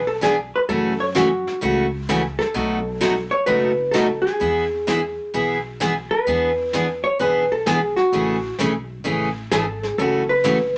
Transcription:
0.00 0.51 B1 medium
0.07 0.12 A4 medium
0.21 0.34 E3 medium
0.21 0.34 B3 medium
0.21 0.35 D4 medium
0.21 0.35 G#4 medium
0.21 0.31 G#4 medium
0.21 snare medium
0.21 hi-hat pedal medium
0.56 0.61 B4 medium
0.69 1.43 F#2 medium
0.69 0.92 C#3 medium
0.69 0.92 E3 medium
0.69 0.92 A3 medium
0.69 0.92 C#4 medium
0.69 0.92 F#4 medium
0.69 1.01 A4 medium
0.69 brush sweep soft
1.00 1.05 C#5 medium
1.15 1.27 C#3 medium
1.15 1.27 E3 medium
1.15 1.28 A3 medium
1.15 1.28 C#4 medium
1.15 1.59 F#4 medium
1.15 1.28 F#4 medium
1.15 snare medium
1.15 hi-hat pedal medium
1.47 snare soft
1.61 2.36 C#2 medium
1.61 1.84 C#3 medium
1.61 1.85 E3 medium
1.61 1.85 A3 medium
1.61 1.85 C#4 medium
1.61 1.85 F#4 medium
1.61 brush sweep soft
2.09 2.21 C#3 medium
2.09 2.21 E3 medium
2.09 2.21 A3 medium
2.09 2.21 C#4 medium
2.09 2.21 F#4 medium
2.09 snare medium
2.09 hi-hat pedal soft
2.39 3.28 A4 medium
2.39 snare soft
2.54 3.29 B1 medium
2.54 2.78 B2 medium
2.54 2.77 F#3 medium
2.54 2.78 A3 medium
2.54 2.78 D#4 medium
2.54 2.78 F#4 medium
2.54 brush sweep soft
3.01 3.13 B2 medium
3.01 3.13 F#3 medium
3.01 3.13 A3 medium
3.01 3.13 D#4 medium
3.01 3.13 F#4 medium
3.01 snare medium
3.01 hi-hat pedal medium
3.31 3.46 C#5 medium
3.46 4.22 F#1 medium
3.46 3.70 B2 medium
3.46 3.70 F#3 medium
3.46 3.70 A3 medium
3.46 3.70 D#4 medium
3.46 3.71 F#4 medium
3.46 3.95 B4 loud
3.46 brush sweep soft
3.91 4.06 B2 medium
3.91 4.06 F#3 medium
3.91 4.06 A3 medium
3.91 4.06 D#4 medium
3.91 4.06 F#4 medium
3.91 4.21 A4 medium
3.91 snare medium
3.91 hi-hat pedal soft
4.22 5.74 G#4 medium
4.27 snare soft
4.40 5.15 E2 medium
4.40 4.63 E3 medium
4.40 4.64 B3 medium
4.40 4.64 E4 medium
4.40 4.64 G#4 medium
4.40 brush sweep soft
4.87 4.99 E3 medium
4.87 4.99 B3 medium
4.87 4.99 E4 medium
4.87 5.00 G#4 medium
4.87 snare medium
4.87 hi-hat pedal medium
5.34 6.08 B1 medium
5.34 5.56 E3 medium
5.34 5.57 B3 medium
5.34 5.57 E4 medium
5.34 5.57 G#4 medium
5.34 brush sweep soft
5.80 5.92 E3 medium
5.80 5.92 B3 medium
5.80 5.93 E4 medium
5.80 5.93 G#4 medium
5.80 snare medium
5.80 hi-hat pedal soft
6.11 7.03 B4 medium
6.27 7.01 E2 medium
6.27 6.49 E3 medium
6.27 6.50 B3 medium
6.27 6.50 D4 medium
6.27 6.50 G#4 medium
6.27 brush sweep soft
6.73 6.85 E3 medium
6.73 6.85 B3 medium
6.73 6.86 D4 medium
6.73 6.86 G#4 medium
6.73 snare medium
6.73 hi-hat pedal medium
7.04 7.19 C#5 medium
7.19 7.94 B1 medium
7.19 7.42 E3 medium
7.19 7.42 B3 medium
7.19 7.43 D4 medium
7.19 7.43 G#4 medium
7.19 7.52 B4 medium
7.19 brush sweep soft
7.52 7.66 A4 medium
7.66 7.78 E3 medium
7.66 7.78 B3 medium
7.66 7.78 D4 medium
7.66 7.95 G#4 medium
7.66 7.78 G#4 medium
7.66 snare medium
7.66 hi-hat pedal soft
7.96 8.54 F#4 medium
7.96 snare soft
8.12 8.49 A1 medium
8.12 8.35 C#3 soft
8.12 8.36 E3 medium
8.12 8.36 A3 medium
8.12 8.36 C#4 medium
8.12 8.36 G#4 medium
8.12 brush sweep soft
8.59 8.98 B1 medium
8.59 8.71 C#3 medium
8.59 8.71 E3 medium
8.59 8.71 A3 medium
8.59 8.71 C#4 medium
8.59 8.72 G#4 medium
8.59 snare medium
8.59 hi-hat pedal soft
9.04 9.45 A1 medium
9.04 9.27 C#3 medium
9.04 9.28 E3 medium
9.04 9.28 A3 medium
9.04 9.28 C#4 medium
9.04 9.28 G#4 medium
9.04 brush sweep soft
9.51 9.91 G#1 medium
9.51 9.63 C#3 medium
9.51 9.64 E3 medium
9.51 9.64 A3 medium
9.51 9.64 C#4 medium
9.51 9.64 G#4 medium
9.51 9.94 A4 medium
9.51 snare medium
9.51 hi-hat pedal medium
9.83 snare soft
9.98 10.72 F#1 medium
9.98 10.21 C#3 soft
9.98 10.22 E3 medium
9.98 10.22 A3 medium
9.98 10.22 C#4 medium
9.98 10.22 F#4 medium
9.98 10.27 A4 medium
9.98 brush sweep medium
10.29 10.77 B4 loud
10.44 10.56 C#3 medium
10.44 10.56 E3 medium
10.44 10.56 A3 medium
10.44 10.56 C#4 medium
10.44 10.57 F#4 medium
10.44 snare medium
10.44 hi-hat pedal medium

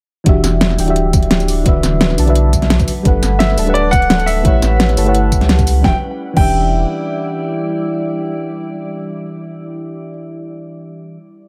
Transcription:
0.24 0.77 E1 loud
0.24 0.76 E3 medium
0.24 1.64 E3 medium
0.24 1.64 G3 medium
0.24 0.76 D4 medium
0.24 2.85 D4 medium
0.24 0.77 F#4 medium
0.24 0.77 G4 medium
0.24 kick loud
0.24 closed hi-hat loud
0.29 0.78 E5 loud
0.44 snare medium
0.44 closed hi-hat medium
0.44 tambourine medium
0.61 snare loud
0.61 closed hi-hat loud
0.70 snare soft
0.77 1.65 D1 medium
0.77 0.84 E3 medium
0.77 0.85 D4 medium
0.77 0.86 F#4 medium
0.77 0.86 G4 medium
0.77 0.86 G5 medium
0.77 open hi-hat medium
0.77 tambourine medium
0.85 1.63 E3 medium
0.85 1.63 D4 medium
0.85 1.64 F#4 medium
0.85 1.64 G4 medium
0.85 closed hi-hat soft
0.90 1.65 E5 loud
0.96 closed hi-hat medium
1.13 kick loud
1.13 closed hi-hat medium
1.13 tambourine medium
1.23 closed hi-hat soft
1.31 snare loud
1.31 closed hi-hat loud
1.40 closed hi-hat soft
1.40 tambourine soft
1.48 open hi-hat medium
1.48 tambourine medium
1.64 1.82 D1 loud
1.64 2.15 D3 medium
1.64 2.87 F#3 medium
1.64 2.16 D4 medium
1.64 2.16 F#4 medium
1.64 5.81 B4 medium
1.64 2.17 B4 medium
1.64 kick loud
1.64 closed hi-hat loud
1.68 2.18 E5 loud
1.83 2.17 D1 loud
1.83 snare medium
1.83 closed hi-hat medium
1.83 tambourine medium
2.01 snare loud
2.01 closed hi-hat medium
2.10 snare soft
2.17 2.87 B1 medium
2.17 2.24 D3 medium
2.17 2.25 D4 medium
2.17 2.25 F#4 medium
2.17 2.26 B4 medium
2.17 2.26 A5 medium
2.17 open hi-hat medium
2.17 tambourine medium
2.25 2.86 D3 medium
2.25 2.86 D4 medium
2.25 2.87 F#4 medium
2.25 2.88 B4 medium
2.25 closed hi-hat soft
2.30 2.88 E5 loud
2.35 closed hi-hat loud
2.53 kick medium
2.53 closed hi-hat medium
2.53 tambourine medium
2.62 snare soft
2.62 closed hi-hat soft
2.70 snare loud
2.70 closed hi-hat loud
2.79 kick loud
2.79 closed hi-hat soft
2.79 tambourine soft
2.88 4.44 A3 medium
2.88 5.82 F#5 medium
2.88 open hi-hat medium
2.88 tambourine medium
3.03 3.21 G1 loud
3.03 3.55 G3 loud
3.03 3.55 D4 medium
3.03 3.56 A4 medium
3.03 3.57 B4 medium
3.03 kick loud
3.03 closed hi-hat medium
3.08 3.57 F#5 loud
3.23 3.57 G1 loud
3.23 snare medium
3.23 closed hi-hat medium
3.23 tambourine medium
3.39 3.76 E5 loud
3.39 snare loud
3.39 closed hi-hat medium
3.50 snare soft
3.57 4.44 D1 loud
3.57 3.64 G3 medium
3.57 3.65 D4 medium
3.57 3.65 A4 medium
3.57 3.65 B4 medium
3.57 3.66 A5 medium
3.57 open hi-hat medium
3.57 tambourine medium
3.65 4.42 G3 loud
3.65 4.43 D4 medium
3.65 4.43 A4 medium
3.65 4.44 B4 medium
3.65 closed hi-hat soft
3.70 4.44 F#5 loud
3.74 3.93 D5 loud
3.74 closed hi-hat medium
3.91 4.28 F#5 loud
3.91 kick loud
3.91 closed hi-hat medium
3.91 tambourine medium
4.02 closed hi-hat soft
4.10 snare loud
4.10 closed hi-hat medium
4.20 closed hi-hat soft
4.20 tambourine soft
4.26 5.45 E5 loud
4.26 open hi-hat medium
4.26 tambourine medium
4.43 4.61 A1 loud
4.43 5.83 G3 medium
4.43 4.94 A3 medium
4.43 5.83 C#4 medium
4.43 4.95 E4 medium
4.43 4.95 G4 medium
4.43 4.96 B4 medium
4.43 4.96 C#5 medium
4.43 kick loud
4.43 closed hi-hat medium
4.48 4.97 F#5 loud
4.62 4.96 A1 loud
4.62 snare soft
4.62 closed hi-hat medium
4.62 tambourine medium
4.80 snare loud
4.80 closed hi-hat medium
4.89 snare soft
4.89 closed hi-hat soft
4.96 5.41 G1 loud
4.96 5.03 A3 medium
4.96 5.04 E4 medium
4.96 5.04 G4 medium
4.96 5.05 B4 medium
4.96 5.05 C#5 medium
4.96 5.05 A5 medium
4.96 open hi-hat medium
4.96 tambourine medium
5.04 5.81 A3 medium
5.04 5.82 E4 medium
5.04 5.82 G4 medium
5.04 5.83 B4 medium
5.04 5.83 C#5 medium
5.04 closed hi-hat soft
5.09 5.84 F#5 loud
5.14 closed hi-hat medium
5.32 kick medium
5.32 closed hi-hat medium
5.32 tambourine medium
5.41 5.49 C#2 medium
5.41 snare soft
5.41 closed hi-hat soft
5.49 5.83 C#2 medium
5.49 snare loud
5.49 closed hi-hat medium
5.59 kick loud
5.59 closed hi-hat soft
5.59 tambourine soft
5.67 open hi-hat medium
5.67 tambourine medium
5.81 5.95 E1 loud
5.81 5.93 E3 medium
5.81 9.39 G3 medium
5.81 5.94 D4 medium
5.81 9.39 E4 medium
5.81 5.95 F#4 medium
5.81 9.39 D5 medium
5.81 5.95 G5 medium
5.81 kick loud
5.81 snare medium
5.86 5.96 G4 medium
5.86 5.97 E5 loud
6.33 6.86 E1 loud
6.33 10.08 E3 medium
6.33 10.09 D4 medium
6.33 10.10 E4 medium
6.33 10.09 G5 medium
6.33 kick loud
6.33 crash medium
6.39 10.11 G4 medium
6.39 10.12 E5 medium

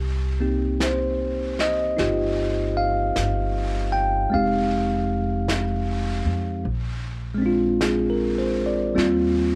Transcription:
0.00 1.95 C2 medium
0.00 0.42 G4 soft
0.40 4.32 A#3 soft
0.40 4.31 C4 soft
0.40 1.96 D#4 soft
0.40 1.99 G4 soft
0.80 1.62 C5 medium
0.80 brush sweep soft
0.80 snare soft
0.80 hi-hat pedal soft
1.59 2.73 D#5 medium
1.59 snare soft
1.97 3.12 G1 medium
1.97 4.31 D#4 soft
1.97 4.32 F4 soft
1.97 4.33 G4 soft
1.97 brush sweep soft
1.97 snare soft
2.77 3.97 F5 medium
3.16 4.29 G1 medium
3.16 brush sweep soft
3.16 snare soft
3.16 hi-hat pedal soft
3.92 4.33 G5 medium
4.30 6.63 G#3 soft
4.30 6.64 C4 soft
4.30 6.65 D#4 soft
4.30 brush sweep soft
4.34 6.22 F1 medium
4.34 6.66 G4 soft
4.34 5.45 F5 medium
5.48 brush sweep soft
5.48 snare soft
5.48 hi-hat pedal soft
6.26 6.62 F2 medium
6.65 8.93 A#1 medium
6.65 brush sweep soft
7.34 8.93 G#3 soft
7.34 8.94 C4 soft
7.42 8.97 D4 soft
7.46 8.95 F4 medium
7.81 8.34 G#4 soft
7.81 brush sweep soft
7.81 snare soft
7.81 hi-hat pedal soft
8.10 8.59 A#4 soft
8.38 8.75 C5 soft
8.66 9.07 D5 soft
8.95 9.55 D#2 medium
8.95 9.55 G3 soft
8.95 9.55 A#3 soft
8.95 9.55 C4 soft
8.95 9.55 F4 soft
8.95 brush sweep soft
8.95 snare soft

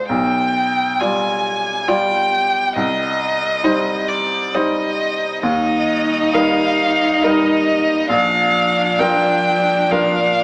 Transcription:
0.00 0.12 G#3 soft
0.00 0.12 F4 soft
0.00 0.12 D5 soft
0.09 0.98 B1 soft
0.09 1.01 G5 medium
1.00 1.84 G3 soft
1.00 1.67 G3 soft
1.00 1.84 F4 soft
1.00 1.66 F4 soft
1.00 1.84 D5 soft
1.00 1.89 G#5 medium
1.87 2.72 G3 soft
1.87 2.54 G3 soft
1.87 2.72 F4 soft
1.87 2.55 F4 soft
1.87 2.72 D5 soft
1.87 2.76 G5 medium
2.76 3.61 C2 soft
2.76 4.10 D#5 medium
3.64 4.51 G3 soft
3.64 4.33 G3 soft
3.64 4.51 D#4 soft
3.64 4.33 D#4 medium
3.64 4.51 C5 soft
4.08 4.56 D5 medium
4.54 5.39 G3 soft
4.54 5.22 G3 soft
4.54 5.39 D#4 soft
4.54 5.22 D#4 soft
4.54 5.39 C5 soft
4.54 5.42 D#5 medium
5.43 6.31 D#2 medium
5.43 8.13 G3 medium
5.43 8.07 D#4 soft
5.43 6.36 D#5 medium
6.33 7.19 G3 soft
6.33 7.19 D#4 soft
6.33 7.20 A#4 soft
6.33 7.24 F5 medium
7.23 8.06 G3 soft
7.23 8.06 D#4 soft
7.23 8.07 A#4 soft
7.23 8.10 D#5 medium
8.09 8.96 A#1 medium
8.09 10.44 F3 medium
8.09 10.44 D4 medium
8.09 9.01 F5 medium
8.99 9.87 F3 soft
8.99 9.87 D4 soft
8.99 9.87 A#4 soft
8.99 9.92 G5 medium
9.91 10.44 F3 soft
9.91 10.44 D4 soft
9.91 10.44 A#4 soft
9.91 10.44 F5 medium

